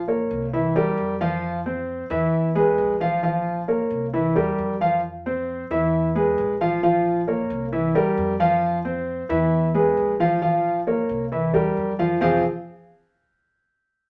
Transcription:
Already playing: upright bass A#1
0.08 grand piano A#3 A#4 C#5
0.31 upright bass C2
0.53 grand piano E3 E4 E5
0.76 upright bass E2, grand piano G3 G4 A#4
0.97 upright bass F2
1.21 grand piano F3 F4 F5
1.66 grand piano C4 C5
2.10 upright bass E2, grand piano E3 E4 E5
2.55 grand piano G#3 G#4 B4
2.78 upright bass A#1
3.00 grand piano F3 F4 F5
3.23 grand piano F3 F4 F5
3.68 grand piano A#3 A#4 C#5
3.90 upright bass C2
4.13 grand piano E3 E4 E5
4.36 upright bass E2, grand piano G3 G4 A#4
4.58 upright bass F2
4.81 grand piano F3 F4 F5
5.26 grand piano C4 C5
5.71 upright bass E2, grand piano E3 E4 E5
6.15 grand piano G#3 G#4 B4
6.38 upright bass A#1
6.61 grand piano F3 F4 F5
6.83 grand piano F3 F4 F5
7.27 grand piano A#3 A#4 C#5
7.50 upright bass C2
7.72 grand piano E3 E4 E5
7.95 upright bass E2, grand piano G3 G4 A#4
8.17 upright bass F2
8.40 grand piano F3 F4 F5
8.85 grand piano C4 C5
9.29 upright bass E2, grand piano E3 E4 E5
9.74 grand piano G#3 G#4 B4
9.97 upright bass A#1
10.20 grand piano F3 F4 F5
10.42 grand piano F3 F4 F5
10.87 grand piano A#3 A#4 C#5
11.09 upright bass C2
11.32 grand piano E3 E4 E5
11.54 upright bass E2, grand piano G3 G4 A#4
11.77 upright bass F2
11.99 grand piano F3 F4 F5
12.21 upright bass F1, grand piano F3 C4 F4 G#4 C5 F5

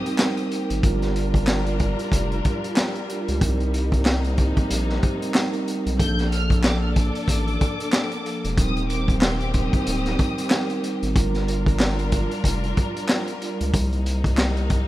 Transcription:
Already playing: string section D#3 A#3 C4 G4, violin section D#6
0.06 vibraphone G3 C4 D#4 A#4, closed hi-hat
0.18 vibraphone G3 C4 D#4 A#4, snare, clap
0.37 closed hi-hat
0.49 vibraphone G3 C4 D#4 A#4, closed hi-hat
0.70 sub bass G#1, closed hi-hat
0.82 sub bass G1, vibraphone G3 D4 F4 A#4, string section G3 D4 F4 A#4, kick, closed hi-hat
1.02 snare, closed hi-hat
1.16 closed hi-hat
1.34 kick, closed hi-hat
1.47 snare, clap
1.67 closed hi-hat
1.80 kick, closed hi-hat
1.99 closed hi-hat
2.12 sub bass F1, kick, closed hi-hat
2.32 closed hi-hat
2.45 kick, closed hi-hat
2.64 closed hi-hat
2.76 snare, clap
2.95 closed hi-hat
3.09 vibraphone G3 D4 F4 A#4, closed hi-hat
3.28 sub bass C#2, closed hi-hat
3.40 sub bass C2, string section C3 A#3 D#4, vibraphone G3 C4 D#4 A#4, kick, closed hi-hat
3.60 closed hi-hat
3.74 closed hi-hat
3.92 kick, closed hi-hat
4.05 snare, clap
4.24 closed hi-hat
4.37 vibraphone G3 C4 D#4 A#4, kick, closed hi-hat
4.57 kick, closed hi-hat
4.71 sub bass A#1, closed hi-hat
4.90 snare
5.03 kick, closed hi-hat
5.21 vibraphone G3 C4 D#4 A#4, closed hi-hat
5.34 vibraphone G3 C4 D#4 A#4, snare, clap
5.53 closed hi-hat
5.66 vibraphone G3 C4 D#4 A#4, closed hi-hat
5.86 sub bass B1, closed hi-hat
5.96 sub bass A#1, vibraphone F3 A#3 D4 A4, string section A#3 D4 A4, violin section G6, kick, closed hi-hat
6.19 snare, closed hi-hat
6.31 violin section F6, closed hi-hat
6.50 kick, closed hi-hat
6.64 violin section D6, snare, clap
6.82 violin section F6
6.96 violin section D6, kick, closed hi-hat
7.15 closed hi-hat
7.28 sub bass A1, kick, closed hi-hat
7.48 closed hi-hat
7.61 kick, closed hi-hat
7.80 closed hi-hat
7.92 snare, clap
8.12 closed hi-hat
8.24 vibraphone F3 A#3 D4 A4, closed hi-hat
8.44 sub bass E1, closed hi-hat
8.55 sub bass D#1, string section D#3 C4 G4, vibraphone G3 C4 D#4 A#4, violin section D#6, kick, closed hi-hat
8.77 closed hi-hat
8.90 violin section D6, closed hi-hat
9.08 kick, closed hi-hat
9.21 violin section C6, snare, clap
9.40 violin section D6, closed hi-hat
9.53 vibraphone G3 C4 D#4 A#4, violin section D#6, kick, closed hi-hat
9.73 kick, closed hi-hat
9.87 sub bass D1, closed hi-hat
10.06 snare, closed hi-hat
10.19 kick, closed hi-hat
10.38 vibraphone G3 C4 D#4 A#4, closed hi-hat
10.50 vibraphone G3 C4 D#4 A#4, snare, clap
10.70 closed hi-hat
10.81 vibraphone G3 C4 D#4 A#4, closed hi-hat
11.03 sub bass G#1, closed hi-hat
11.15 sub bass G1, vibraphone G3 D4 F4 A#4, string section G3 D4 F4 A#4, kick, closed hi-hat
11.34 snare, closed hi-hat
11.48 closed hi-hat
11.66 kick, closed hi-hat
11.80 snare, clap
11.99 closed hi-hat
12.12 kick, closed hi-hat
12.31 closed hi-hat
12.44 sub bass F1, kick, closed hi-hat
12.64 closed hi-hat
12.77 kick, closed hi-hat
12.97 closed hi-hat
13.09 snare, clap
13.28 closed hi-hat
13.41 vibraphone G3 D4 F4 A#4, closed hi-hat
13.61 sub bass C#2, closed hi-hat
13.74 sub bass C2, string section C3 A#3 D#4, kick, closed hi-hat
13.93 closed hi-hat
14.06 closed hi-hat
14.24 kick, closed hi-hat
14.37 snare, clap
14.57 closed hi-hat
14.70 kick, closed hi-hat

